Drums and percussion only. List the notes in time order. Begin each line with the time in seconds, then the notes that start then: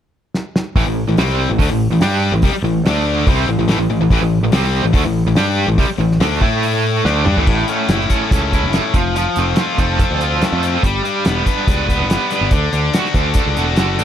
0.34 snare
0.56 snare
0.76 kick, open hi-hat
1.17 snare, open hi-hat
1.29 snare
1.59 kick, open hi-hat
2.01 snare, open hi-hat
2.42 kick, open hi-hat
2.85 snare, open hi-hat
3.27 kick, open hi-hat
3.68 snare, open hi-hat
4.11 kick, open hi-hat
4.52 snare, open hi-hat
4.64 snare
4.94 kick, open hi-hat
5.36 snare, open hi-hat
5.78 kick, open hi-hat
6.12 snare
6.20 snare, open hi-hat
6.41 kick
6.63 open hi-hat
7.05 snare
7.27 mid tom
7.37 floor tom
7.47 kick, crash
7.68 closed hi-hat
7.89 snare, closed hi-hat
8.01 snare
8.10 kick, closed hi-hat
8.31 kick, closed hi-hat
8.53 kick, closed hi-hat
8.73 snare, closed hi-hat
8.94 kick, closed hi-hat
9.16 closed hi-hat
9.36 closed hi-hat
9.56 snare, closed hi-hat
9.78 kick, closed hi-hat
9.99 kick, closed hi-hat
10.21 closed hi-hat
10.42 snare, closed hi-hat
10.63 closed hi-hat
10.83 kick, closed hi-hat
11.05 closed hi-hat
11.25 snare, closed hi-hat
11.46 kick, closed hi-hat
11.68 kick, closed hi-hat
11.89 kick, closed hi-hat
12.10 snare, closed hi-hat
12.31 snare, closed hi-hat
12.51 kick, closed hi-hat
12.73 closed hi-hat
12.93 snare, closed hi-hat
13.05 snare
13.14 kick, closed hi-hat
13.34 kick, closed hi-hat
13.57 closed hi-hat
13.76 snare, closed hi-hat
13.99 closed hi-hat